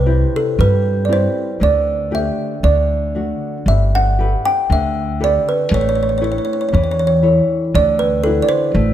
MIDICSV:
0, 0, Header, 1, 4, 480
1, 0, Start_track
1, 0, Key_signature, 1, "major"
1, 0, Tempo, 1027397
1, 750, Time_signature, 2, 2, 24, 8
1, 2197, Tempo, 1011804
1, 4206, End_track
2, 0, Start_track
2, 0, Title_t, "Kalimba"
2, 0, Program_c, 0, 108
2, 0, Note_on_c, 0, 71, 76
2, 170, Note_on_c, 0, 69, 72
2, 173, Note_off_c, 0, 71, 0
2, 283, Note_on_c, 0, 71, 77
2, 284, Note_off_c, 0, 69, 0
2, 490, Note_off_c, 0, 71, 0
2, 491, Note_on_c, 0, 74, 58
2, 517, Note_off_c, 0, 74, 0
2, 526, Note_on_c, 0, 72, 76
2, 762, Note_on_c, 0, 74, 79
2, 765, Note_off_c, 0, 72, 0
2, 980, Note_off_c, 0, 74, 0
2, 1004, Note_on_c, 0, 76, 75
2, 1109, Note_off_c, 0, 76, 0
2, 1233, Note_on_c, 0, 74, 76
2, 1576, Note_off_c, 0, 74, 0
2, 1720, Note_on_c, 0, 76, 80
2, 1773, Note_off_c, 0, 76, 0
2, 1846, Note_on_c, 0, 78, 85
2, 2081, Note_on_c, 0, 79, 84
2, 2090, Note_off_c, 0, 78, 0
2, 2203, Note_off_c, 0, 79, 0
2, 2207, Note_on_c, 0, 76, 83
2, 2451, Note_on_c, 0, 74, 85
2, 2452, Note_off_c, 0, 76, 0
2, 2558, Note_off_c, 0, 74, 0
2, 2569, Note_on_c, 0, 71, 78
2, 2621, Note_off_c, 0, 71, 0
2, 2690, Note_on_c, 0, 73, 70
2, 2718, Note_off_c, 0, 73, 0
2, 2723, Note_on_c, 0, 73, 53
2, 2752, Note_off_c, 0, 73, 0
2, 2759, Note_on_c, 0, 73, 60
2, 2785, Note_off_c, 0, 73, 0
2, 2791, Note_on_c, 0, 73, 50
2, 2820, Note_off_c, 0, 73, 0
2, 2825, Note_on_c, 0, 73, 57
2, 2851, Note_off_c, 0, 73, 0
2, 2856, Note_on_c, 0, 73, 48
2, 2888, Note_off_c, 0, 73, 0
2, 2897, Note_on_c, 0, 73, 55
2, 2922, Note_off_c, 0, 73, 0
2, 2927, Note_on_c, 0, 73, 50
2, 2957, Note_off_c, 0, 73, 0
2, 2963, Note_on_c, 0, 73, 57
2, 2988, Note_off_c, 0, 73, 0
2, 2994, Note_on_c, 0, 73, 49
2, 3019, Note_off_c, 0, 73, 0
2, 3025, Note_on_c, 0, 73, 55
2, 3059, Note_off_c, 0, 73, 0
2, 3065, Note_on_c, 0, 73, 48
2, 3096, Note_off_c, 0, 73, 0
2, 3101, Note_on_c, 0, 73, 53
2, 3133, Note_off_c, 0, 73, 0
2, 3138, Note_on_c, 0, 73, 49
2, 3160, Note_off_c, 0, 73, 0
2, 3166, Note_on_c, 0, 73, 58
2, 3200, Note_off_c, 0, 73, 0
2, 3209, Note_on_c, 0, 73, 48
2, 3240, Note_off_c, 0, 73, 0
2, 3246, Note_on_c, 0, 73, 60
2, 3276, Note_off_c, 0, 73, 0
2, 3284, Note_on_c, 0, 73, 55
2, 3312, Note_off_c, 0, 73, 0
2, 3321, Note_on_c, 0, 73, 69
2, 3348, Note_off_c, 0, 73, 0
2, 3644, Note_on_c, 0, 74, 95
2, 3757, Note_on_c, 0, 71, 88
2, 3764, Note_off_c, 0, 74, 0
2, 3868, Note_off_c, 0, 71, 0
2, 3873, Note_on_c, 0, 69, 88
2, 3956, Note_off_c, 0, 69, 0
2, 3963, Note_on_c, 0, 74, 68
2, 3992, Note_on_c, 0, 72, 86
2, 3996, Note_off_c, 0, 74, 0
2, 4206, Note_off_c, 0, 72, 0
2, 4206, End_track
3, 0, Start_track
3, 0, Title_t, "Nylon-string guitar"
3, 0, Program_c, 1, 24
3, 0, Note_on_c, 1, 48, 66
3, 26, Note_on_c, 1, 60, 50
3, 30, Note_on_c, 1, 67, 53
3, 31, Note_on_c, 1, 64, 45
3, 258, Note_off_c, 1, 48, 0
3, 275, Note_on_c, 1, 55, 66
3, 411, Note_off_c, 1, 60, 0
3, 413, Note_off_c, 1, 64, 0
3, 413, Note_off_c, 1, 67, 0
3, 505, Note_on_c, 1, 60, 47
3, 510, Note_on_c, 1, 64, 40
3, 512, Note_on_c, 1, 67, 48
3, 699, Note_off_c, 1, 60, 0
3, 700, Note_off_c, 1, 64, 0
3, 703, Note_off_c, 1, 67, 0
3, 737, Note_off_c, 1, 55, 0
3, 747, Note_on_c, 1, 50, 60
3, 986, Note_on_c, 1, 57, 44
3, 989, Note_on_c, 1, 62, 42
3, 990, Note_on_c, 1, 67, 49
3, 1181, Note_off_c, 1, 57, 0
3, 1182, Note_off_c, 1, 62, 0
3, 1183, Note_off_c, 1, 67, 0
3, 1215, Note_off_c, 1, 50, 0
3, 1233, Note_on_c, 1, 50, 54
3, 1471, Note_on_c, 1, 57, 40
3, 1473, Note_on_c, 1, 62, 38
3, 1476, Note_on_c, 1, 66, 43
3, 1666, Note_off_c, 1, 57, 0
3, 1666, Note_off_c, 1, 62, 0
3, 1668, Note_off_c, 1, 66, 0
3, 1701, Note_off_c, 1, 50, 0
3, 1715, Note_on_c, 1, 55, 55
3, 1954, Note_off_c, 1, 55, 0
3, 1956, Note_on_c, 1, 67, 44
3, 1963, Note_on_c, 1, 69, 40
3, 1965, Note_on_c, 1, 71, 48
3, 2195, Note_on_c, 1, 50, 64
3, 2343, Note_off_c, 1, 67, 0
3, 2347, Note_off_c, 1, 69, 0
3, 2347, Note_off_c, 1, 71, 0
3, 2434, Note_on_c, 1, 67, 46
3, 2435, Note_on_c, 1, 69, 42
3, 2440, Note_on_c, 1, 71, 48
3, 2629, Note_off_c, 1, 67, 0
3, 2629, Note_off_c, 1, 69, 0
3, 2632, Note_off_c, 1, 71, 0
3, 2665, Note_off_c, 1, 50, 0
3, 2682, Note_on_c, 1, 57, 64
3, 2913, Note_on_c, 1, 64, 46
3, 2915, Note_on_c, 1, 69, 46
3, 2916, Note_on_c, 1, 73, 52
3, 3148, Note_off_c, 1, 57, 0
3, 3157, Note_on_c, 1, 52, 65
3, 3302, Note_off_c, 1, 64, 0
3, 3304, Note_off_c, 1, 69, 0
3, 3304, Note_off_c, 1, 73, 0
3, 3394, Note_on_c, 1, 64, 47
3, 3397, Note_on_c, 1, 69, 44
3, 3398, Note_on_c, 1, 73, 50
3, 3587, Note_off_c, 1, 64, 0
3, 3589, Note_off_c, 1, 73, 0
3, 3590, Note_off_c, 1, 69, 0
3, 3623, Note_off_c, 1, 52, 0
3, 3641, Note_on_c, 1, 50, 66
3, 3881, Note_on_c, 1, 62, 49
3, 3883, Note_on_c, 1, 64, 45
3, 3883, Note_on_c, 1, 66, 57
3, 4102, Note_off_c, 1, 50, 0
3, 4117, Note_on_c, 1, 57, 61
3, 4206, Note_off_c, 1, 57, 0
3, 4206, Note_off_c, 1, 62, 0
3, 4206, Note_off_c, 1, 64, 0
3, 4206, Note_off_c, 1, 66, 0
3, 4206, End_track
4, 0, Start_track
4, 0, Title_t, "Upright bass"
4, 0, Program_c, 2, 32
4, 0, Note_on_c, 2, 36, 98
4, 104, Note_off_c, 2, 36, 0
4, 274, Note_on_c, 2, 43, 85
4, 584, Note_off_c, 2, 43, 0
4, 753, Note_on_c, 2, 38, 80
4, 1065, Note_off_c, 2, 38, 0
4, 1230, Note_on_c, 2, 38, 79
4, 1545, Note_off_c, 2, 38, 0
4, 1709, Note_on_c, 2, 31, 82
4, 2025, Note_off_c, 2, 31, 0
4, 2194, Note_on_c, 2, 38, 82
4, 2509, Note_off_c, 2, 38, 0
4, 2677, Note_on_c, 2, 33, 88
4, 2991, Note_off_c, 2, 33, 0
4, 3161, Note_on_c, 2, 40, 90
4, 3472, Note_off_c, 2, 40, 0
4, 3640, Note_on_c, 2, 38, 90
4, 3949, Note_off_c, 2, 38, 0
4, 4115, Note_on_c, 2, 33, 90
4, 4206, Note_off_c, 2, 33, 0
4, 4206, End_track
0, 0, End_of_file